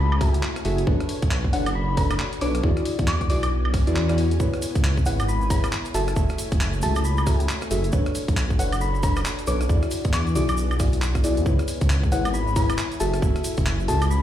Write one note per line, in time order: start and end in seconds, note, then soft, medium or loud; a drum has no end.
0.00 0.42 C#2 medium
0.00 0.85 A3 medium
0.00 0.85 E4 medium
0.00 2.60 C#5 medium
0.00 0.83 G#5 medium
0.00 0.34 B5 medium
0.12 high woodblock medium
0.21 0.39 F#4 medium
0.21 0.39 G#4 medium
0.21 0.39 A4 medium
0.21 0.39 E5 medium
0.21 kick loud
0.21 cross-stick medium
0.21 open hi-hat loud
0.34 closed hi-hat medium
0.43 clap loud
0.56 cross-stick medium
0.56 closed hi-hat medium
0.65 0.85 F#1 medium
0.65 0.85 F#4 loud
0.65 0.85 G#4 medium
0.65 0.85 A4 medium
0.65 0.85 E5 loud
0.65 open hi-hat medium
0.78 closed hi-hat medium
0.87 0.99 B1 loud
0.87 1.51 D4 medium
0.87 2.62 D4 medium
0.87 4.36 F#4 medium
0.87 2.62 A4 medium
0.87 1.51 A4 medium
0.87 1.51 B4 medium
0.87 1.51 C#5 medium
0.87 kick loud
1.00 cross-stick soft
1.00 closed hi-hat soft
1.09 open hi-hat loud
1.22 1.55 B1 medium
1.22 kick loud
1.22 closed hi-hat medium
1.31 clap loud
1.45 kick medium
1.53 2.18 F#1 medium
1.53 1.66 D4 medium
1.53 1.66 A4 medium
1.53 1.66 B4 medium
1.53 1.66 C#5 medium
1.53 1.68 F#5 medium
1.53 open hi-hat medium
1.66 closed hi-hat medium
1.66 high woodblock medium
1.75 1.96 B5 medium
1.97 2.15 D4 medium
1.97 2.15 A4 medium
1.97 2.15 B4 medium
1.97 2.15 C#5 medium
1.97 2.12 B5 medium
1.97 kick loud
1.97 open hi-hat loud
2.11 cross-stick medium
2.11 closed hi-hat medium
2.11 high woodblock medium
2.19 clap loud
2.33 closed hi-hat medium
2.41 2.62 B1 medium
2.41 2.61 D4 loud
2.41 2.61 A4 medium
2.41 2.61 B4 medium
2.41 2.61 C#5 loud
2.41 2.56 D6 medium
2.41 open hi-hat loud
2.55 cross-stick medium
2.55 closed hi-hat medium
2.63 2.76 E2 medium
2.63 5.91 B3 medium
2.63 4.38 D4 medium
2.63 3.28 E4 medium
2.63 3.28 F#4 medium
2.63 3.28 G#4 medium
2.63 3.28 D5 medium
2.63 7.89 G#5 loud
2.63 kick loud
2.77 cross-stick medium
2.77 closed hi-hat soft
2.85 open hi-hat loud
2.99 3.31 E2 medium
2.99 kick loud
2.99 closed hi-hat medium
3.08 3.28 D6 loud
3.08 clap loud
3.21 kick medium
3.21 closed hi-hat soft
3.30 3.73 B1 medium
3.30 3.42 E4 medium
3.30 3.42 F#4 medium
3.30 3.42 G#4 medium
3.30 3.42 D5 medium
3.30 3.38 D6 medium
3.30 open hi-hat loud
3.43 3.49 D6 medium
3.43 closed hi-hat medium
3.43 high woodblock medium
3.52 swell medium
3.65 high woodblock medium
3.74 3.86 B1 loud
3.74 kick loud
3.74 cross-stick medium
3.74 open hi-hat loud
3.87 4.39 E2 medium
3.87 4.06 E4 loud
3.87 4.06 F#4 medium
3.87 4.06 G#4 medium
3.87 4.06 D5 loud
3.87 closed hi-hat medium
3.96 clap loud
4.09 4.25 E4 loud
4.09 4.25 F#4 medium
4.09 4.25 G#4 medium
4.09 4.25 D5 loud
4.09 cross-stick medium
4.09 closed hi-hat medium
4.18 open hi-hat loud
4.31 closed hi-hat medium
4.40 4.52 C#2 loud
4.40 5.04 E4 medium
4.40 7.89 E4 medium
4.40 5.04 G#4 medium
4.40 5.04 B4 medium
4.40 9.65 C#5 medium
4.40 5.04 C#5 medium
4.40 kick loud
4.40 shaker medium
4.54 cross-stick medium
4.54 closed hi-hat soft
4.54 shaker soft
4.62 open hi-hat loud
4.62 shaker medium
4.75 5.08 C#2 medium
4.75 kick loud
4.75 closed hi-hat medium
4.75 shaker soft
4.84 clap loud
4.84 shaker soft
4.97 kick medium
4.97 shaker soft
5.05 5.71 G#1 medium
5.05 5.19 E4 medium
5.05 5.19 G#4 medium
5.05 5.19 B4 medium
5.05 5.19 C#5 medium
5.05 5.21 F#5 loud
5.05 open hi-hat loud
5.05 shaker loud
5.19 closed hi-hat medium
5.19 high woodblock medium
5.19 shaker soft
5.28 5.49 B5 medium
5.28 shaker medium
5.41 shaker soft
5.50 5.68 E4 medium
5.50 5.68 G#4 medium
5.50 5.68 B4 medium
5.50 5.68 C#5 medium
5.50 5.65 B5 medium
5.50 kick loud
5.50 open hi-hat loud
5.50 shaker medium
5.64 cross-stick medium
5.64 closed hi-hat medium
5.64 high woodblock medium
5.64 shaker soft
5.72 clap loud
5.72 shaker soft
5.85 closed hi-hat medium
5.85 shaker soft
5.94 6.15 F#1 medium
5.94 7.91 A3 medium
5.94 6.14 F#4 loud
5.94 6.14 G#4 medium
5.94 6.14 A4 medium
5.94 6.14 E5 loud
5.94 6.03 A5 medium
5.94 open hi-hat loud
5.94 shaker medium
6.08 6.14 A5 medium
6.08 cross-stick medium
6.08 closed hi-hat medium
6.08 shaker soft
6.16 6.28 F#1 loud
6.16 6.80 F#4 medium
6.16 6.80 G#4 medium
6.16 6.80 A4 medium
6.16 6.80 E5 medium
6.16 kick loud
6.16 shaker medium
6.29 cross-stick medium
6.29 closed hi-hat soft
6.29 shaker soft
6.38 open hi-hat loud
6.38 shaker loud
6.51 6.84 F#1 medium
6.51 kick loud
6.51 closed hi-hat medium
6.51 shaker soft
6.61 clap loud
6.61 shaker medium
6.73 shaker soft
6.82 7.47 C#2 medium
6.82 6.95 F#4 medium
6.82 6.95 G#4 medium
6.82 6.95 A4 medium
6.82 6.95 E5 medium
6.82 7.03 A5 loud
6.82 open hi-hat loud
6.82 shaker medium
6.95 closed hi-hat medium
6.95 high woodblock medium
6.95 shaker soft
7.04 7.40 B5 medium
7.04 shaker medium
7.17 high woodblock medium
7.17 shaker soft
7.27 7.45 F#4 medium
7.27 7.45 G#4 medium
7.27 7.45 A4 medium
7.27 7.45 E5 medium
7.27 kick loud
7.27 cross-stick medium
7.27 open hi-hat loud
7.27 shaker medium
7.40 closed hi-hat medium
7.40 shaker soft
7.49 clap loud
7.49 shaker soft
7.61 cross-stick medium
7.61 closed hi-hat medium
7.61 shaker soft
7.71 7.91 F#1 medium
7.71 7.91 F#4 loud
7.71 7.91 G#4 medium
7.71 7.91 A4 medium
7.71 7.91 E5 loud
7.71 open hi-hat loud
7.71 shaker medium
7.84 closed hi-hat medium
7.84 shaker soft
7.92 8.05 B1 loud
7.92 11.42 D4 medium
7.92 8.57 D4 medium
7.92 11.42 F#4 medium
7.92 9.68 A4 loud
7.92 8.57 A4 medium
7.92 8.57 B4 medium
7.92 8.57 C#5 medium
7.92 kick loud
7.92 shaker medium
8.05 cross-stick medium
8.05 closed hi-hat soft
8.05 shaker soft
8.15 open hi-hat loud
8.15 shaker medium
8.28 8.61 B1 medium
8.28 kick loud
8.28 closed hi-hat medium
8.28 shaker soft
8.37 clap loud
8.37 shaker medium
8.50 kick medium
8.50 shaker soft
8.59 9.24 F#1 medium
8.59 8.72 D4 medium
8.59 8.72 A4 medium
8.59 8.72 B4 medium
8.59 8.72 C#5 medium
8.59 8.74 F#5 loud
8.59 open hi-hat loud
8.59 shaker loud
8.73 closed hi-hat medium
8.73 high woodblock medium
8.73 shaker soft
8.81 9.01 B5 loud
8.81 shaker medium
8.95 shaker soft
9.03 9.21 D4 medium
9.03 9.21 A4 medium
9.03 9.21 B4 medium
9.03 9.21 C#5 medium
9.03 9.18 B5 loud
9.03 kick loud
9.03 open hi-hat loud
9.03 shaker loud
9.16 cross-stick medium
9.16 closed hi-hat medium
9.16 high woodblock medium
9.16 shaker soft
9.25 clap loud
9.25 shaker medium
9.39 closed hi-hat medium
9.39 shaker soft
9.47 9.68 B1 medium
9.47 9.67 D4 loud
9.47 9.67 A4 medium
9.47 9.67 B4 medium
9.47 9.67 C#5 loud
9.47 9.62 D6 medium
9.47 open hi-hat medium
9.47 shaker medium
9.61 cross-stick medium
9.61 closed hi-hat medium
9.61 shaker soft
9.69 9.81 E2 loud
9.69 11.44 B3 medium
9.69 10.33 E4 medium
9.69 10.33 F#4 medium
9.69 11.44 G#4 loud
9.69 10.34 G#4 medium
9.69 10.33 D5 medium
9.69 kick loud
9.69 shaker medium
9.82 cross-stick medium
9.82 closed hi-hat soft
9.82 shaker soft
9.91 open hi-hat loud
9.91 shaker loud
10.05 10.37 E2 medium
10.05 kick loud
10.05 closed hi-hat medium
10.05 shaker soft
10.13 10.34 D6 loud
10.13 clap loud
10.13 shaker medium
10.27 closed hi-hat soft
10.27 shaker soft
10.35 10.93 B1 medium
10.35 10.48 E4 medium
10.35 10.48 F#4 medium
10.35 10.48 G#4 medium
10.35 10.48 D5 medium
10.35 10.44 D6 medium
10.35 open hi-hat medium
10.35 shaker loud
10.49 10.55 D6 medium
10.49 closed hi-hat medium
10.49 high woodblock medium
10.49 shaker soft
10.57 shaker medium
10.71 high woodblock medium
10.71 shaker soft
10.79 10.97 E4 medium
10.79 10.97 F#4 medium
10.79 10.97 G#4 medium
10.79 10.97 D5 medium
10.79 kick loud
10.79 cross-stick medium
10.79 open hi-hat loud
10.79 shaker loud
10.93 11.39 B1 medium
10.93 closed hi-hat medium
10.93 shaker soft
11.02 clap loud
11.02 shaker medium
11.15 kick medium
11.15 cross-stick medium
11.15 closed hi-hat medium
11.15 shaker soft
11.24 11.44 E4 loud
11.24 11.44 F#4 medium
11.24 11.44 G#4 medium
11.24 11.44 D5 loud
11.24 open hi-hat medium
11.24 shaker medium
11.37 11.45 E2 loud
11.37 closed hi-hat medium
11.37 shaker soft
11.46 11.58 C#2 medium
11.46 12.99 B3 medium
11.46 12.10 E4 medium
11.46 14.22 E4 medium
11.46 12.10 G#4 medium
11.46 12.10 B4 medium
11.46 12.10 C#5 medium
11.46 14.22 C#5 medium
11.46 14.22 G#5 loud
11.46 kick loud
11.46 shaker soft
11.59 cross-stick soft
11.59 closed hi-hat soft
11.59 shaker soft
11.68 open hi-hat loud
11.68 shaker medium
11.81 12.14 C#2 medium
11.81 kick loud
11.81 closed hi-hat medium
11.81 shaker soft
11.90 clap loud
11.90 shaker medium
12.03 kick medium
12.03 shaker soft
12.12 12.77 G#1 medium
12.12 12.25 E4 medium
12.12 12.25 G#4 medium
12.12 12.25 B4 medium
12.12 12.25 C#5 medium
12.12 12.27 F#5 loud
12.12 open hi-hat medium
12.12 shaker medium
12.25 closed hi-hat medium
12.25 high woodblock medium
12.25 shaker soft
12.34 12.54 B5 medium
12.34 shaker medium
12.47 shaker soft
12.56 12.74 E4 medium
12.56 12.74 G#4 medium
12.56 12.74 B4 medium
12.56 12.74 C#5 medium
12.56 12.71 B5 medium
12.56 kick loud
12.56 open hi-hat loud
12.56 shaker loud
12.70 cross-stick medium
12.70 closed hi-hat medium
12.70 high woodblock medium
12.70 shaker soft
12.78 clap loud
12.78 shaker medium
12.92 closed hi-hat medium
12.92 shaker soft
13.00 13.21 F#1 medium
13.00 14.22 A3 medium
13.00 13.20 F#4 medium
13.00 13.20 G#4 medium
13.00 13.20 A4 medium
13.00 13.20 E5 loud
13.00 13.09 A5 medium
13.00 open hi-hat medium
13.00 shaker medium
13.13 13.19 A5 medium
13.13 cross-stick medium
13.13 closed hi-hat medium
13.13 shaker soft
13.22 13.34 F#1 loud
13.22 13.86 F#4 medium
13.22 13.86 G#4 medium
13.22 13.86 A4 medium
13.22 13.86 E5 medium
13.22 kick loud
13.22 shaker medium
13.35 cross-stick medium
13.35 closed hi-hat soft
13.35 shaker soft
13.44 open hi-hat loud
13.44 shaker medium
13.57 13.90 F#1 medium
13.57 kick loud
13.57 closed hi-hat medium
13.57 shaker soft
13.66 clap loud
13.66 shaker soft
13.80 shaker soft
13.88 14.22 C#2 medium
13.88 14.01 F#4 medium
13.88 14.01 G#4 medium
13.88 14.01 A4 medium
13.88 14.01 E5 medium
13.88 14.09 A5 loud
13.88 open hi-hat medium
13.88 shaker medium
14.01 closed hi-hat medium
14.01 high woodblock medium
14.01 shaker soft
14.11 14.22 B5 loud
14.11 shaker soft